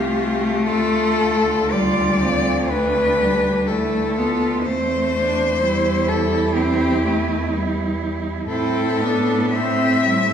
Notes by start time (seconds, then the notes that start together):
Already playing: C2 A3 F4 G4
0.67 D2 F4 A4
1.71 G3 F4 D5
2.22 F3 C4
2.70 A3 D4 B4
3.21 G3
3.67 A3 E4 A4
4.17 B3 F4
4.62 E2 C4 C5
4.66 A3
5.13 D4
5.61 G3 E4
6.09 A4
6.55 C4 G4
7.04 A3
7.53 G3
8.47 A2 C4 E4 A4
9.01 B3 D4
9.54 C4 E5
10.05 G3 C4